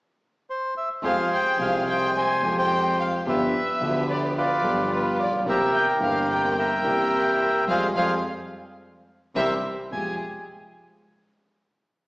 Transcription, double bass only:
1.02 1.26 F2 medium
1.59 2.38 C2 medium
2.42 3.21 F2 medium
3.26 3.49 G1 medium
3.81 4.60 D2 medium
4.64 5.19 G1 medium
5.20 5.47 A#1 soft
5.47 5.70 C2 medium
6.01 6.80 G1 medium
6.85 7.64 C2 medium
7.67 7.88 F2 medium
7.95 8.16 F2 medium
9.35 9.56 C2 medium
9.91 10.15 F2 soft

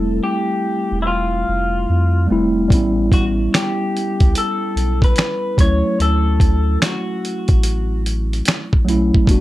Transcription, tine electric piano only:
0.00 0.70 G3 medium
0.00 0.71 A3 medium
0.00 0.72 C4 medium
0.00 0.72 E4 medium
2.27 2.63 G3 medium
2.27 2.64 A3 medium
2.27 2.64 C4 medium
2.32 2.65 E4 medium
2.69 3.99 G3 medium
2.69 4.00 B3 medium
2.69 4.01 C#4 medium
2.74 4.02 E4 medium
5.57 6.91 F#3 medium
5.57 6.92 A3 medium
5.57 6.93 C#4 medium
5.62 6.94 E4 medium
8.85 9.20 F#3 medium
8.85 9.21 A3 medium
8.85 9.22 C#4 medium
8.90 9.23 E4 medium
9.26 9.41 G3 medium
9.26 9.41 B3 medium
9.26 9.41 D4 medium
9.31 9.41 F#4 medium

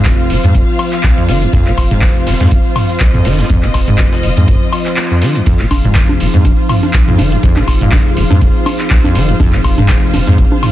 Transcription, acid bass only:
0.06 0.32 F1 medium
0.30 0.38 D#3 medium
0.44 0.56 G#2 medium
0.55 0.62 F2 medium
1.17 1.30 F2 medium
1.28 1.43 D#3 medium
1.42 1.48 F2 medium
1.53 1.68 F2 loud
1.67 1.73 C3 medium
1.91 2.04 G#2 medium
2.02 2.28 F1 medium
2.27 2.34 D#3 medium
2.40 2.53 G#2 medium
2.51 2.59 F2 medium
3.14 3.27 F2 medium
3.25 3.40 D#3 medium
3.39 3.45 F2 medium
3.50 3.65 F2 loud
3.63 3.69 C3 medium
3.88 4.00 G#2 medium
3.99 4.25 F1 medium
4.23 4.31 D#3 medium
4.37 4.50 G#2 medium
4.48 4.55 F2 medium
5.11 5.23 F2 medium
5.22 5.37 D#3 medium
5.35 5.41 F2 medium
5.47 5.62 F2 loud
5.60 5.66 C3 medium
5.85 5.97 G#2 medium
5.96 6.22 F1 medium
6.20 6.28 D#3 medium
6.34 6.46 G#2 medium
6.45 6.52 F2 medium
7.08 7.20 F2 medium
7.19 7.34 D#3 medium
7.32 7.38 F2 medium
7.43 7.58 F2 loud
7.57 7.63 C3 medium
7.81 7.94 G#2 medium
7.92 8.19 F1 medium
8.17 8.24 D#3 medium
8.31 8.43 G#2 medium
8.42 8.49 F2 medium
9.04 9.17 F2 medium
9.15 9.30 D#3 medium
9.29 9.35 F2 medium
9.40 9.55 F2 loud
9.53 9.59 C3 medium
9.78 9.91 G#2 medium
9.89 10.15 F1 medium
10.14 10.21 D#3 medium
10.27 10.40 G#2 medium
10.38 10.46 F2 medium

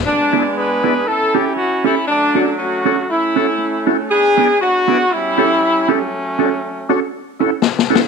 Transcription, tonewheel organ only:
0.32 0.43 E4 medium
0.32 0.44 G#4 medium
0.32 0.44 B4 medium
0.32 0.44 D5 loud
0.83 0.94 E4 medium
0.83 0.94 G#4 medium
0.83 0.94 B4 medium
0.83 0.95 D5 loud
1.34 1.45 E4 medium
1.34 1.45 G4 medium
1.34 1.45 A4 medium
1.34 1.45 C#5 loud
1.84 1.95 E4 medium
1.84 1.95 G4 medium
1.84 1.96 A4 medium
1.84 1.96 C#5 loud
2.35 2.46 D4 medium
2.35 2.46 F#4 medium
2.35 2.46 A4 medium
2.35 2.46 C#5 loud
2.85 2.96 D4 loud
2.85 2.96 F#4 medium
2.85 2.96 A4 medium
2.85 2.97 C#5 loud
3.36 3.47 E4 medium
3.36 3.47 F#4 medium
3.36 3.47 A4 medium
3.36 3.47 C#5 loud
3.86 3.97 E4 medium
3.86 3.97 F#4 medium
3.86 3.97 A4 medium
3.86 3.98 C#5 loud
4.37 4.47 E4 medium
4.37 4.48 G#4 medium
4.37 4.48 B4 medium
4.37 4.48 D5 loud
4.88 4.98 E4 loud
4.88 4.98 G#4 medium
4.88 4.98 B4 medium
4.88 4.99 D5 loud
5.38 5.48 E4 medium
5.38 5.49 G4 medium
5.38 5.49 A4 medium
5.38 5.49 C#5 loud
5.88 5.99 E4 medium
5.88 5.99 G4 medium
5.88 5.99 A4 medium
5.88 5.99 C#5 loud
6.39 6.49 D4 medium
6.39 6.49 F#4 medium
6.39 6.50 A4 medium
6.39 6.50 C#5 loud
6.89 7.00 D4 medium
6.89 7.00 F#4 medium
6.89 7.00 A4 medium
6.89 7.00 C#5 loud
7.39 7.50 E4 medium
7.39 7.50 F#4 medium
7.39 7.51 A4 medium
7.39 7.51 C#5 loud
7.90 8.00 E4 medium
7.90 8.00 F#4 medium
7.90 8.01 A4 medium
7.90 8.01 C#5 loud

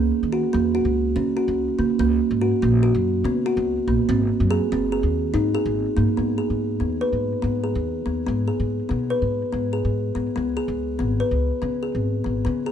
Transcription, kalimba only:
0.00 0.18 A#3 medium
0.33 0.46 F#4 medium
0.53 0.67 A#3 medium
0.75 1.02 F#4 medium
1.16 1.29 C#4 medium
1.37 1.64 F#4 medium
1.79 1.92 A#3 medium
1.99 2.26 A#3 medium
2.41 2.55 F#4 medium
2.62 2.76 A#3 medium
2.83 3.10 F#4 medium
3.25 3.39 B3 medium
3.46 3.73 F#4 medium
3.88 4.01 A#3 medium
4.09 4.36 C4 medium
4.51 4.64 G#4 medium
4.72 4.85 C4 medium
4.92 5.19 G#4 medium
5.34 5.47 D#4 medium
5.55 5.82 G#4 medium
5.97 6.10 A#3 medium
6.17 6.31 B3 medium
6.38 6.65 G#4 medium
6.80 6.94 B3 medium
7.01 7.28 B4 medium
7.42 7.56 B3 medium
7.64 7.91 G#4 medium
8.06 8.19 B3 medium
8.27 8.40 B3 medium
8.48 8.75 G#4 medium
8.89 9.03 B3 medium
9.10 9.38 B4 medium
9.52 9.66 B3 medium
9.73 10.00 G#4 medium
10.15 10.29 B3 medium
10.36 10.49 B3 medium
10.57 10.84 G#4 medium
10.99 11.13 B3 medium
11.20 11.47 B4 medium
11.62 11.75 B3 medium
11.83 12.10 G#4 medium
12.24 12.38 B3 medium
12.45 12.59 B3 medium
12.66 12.72 G#4 medium

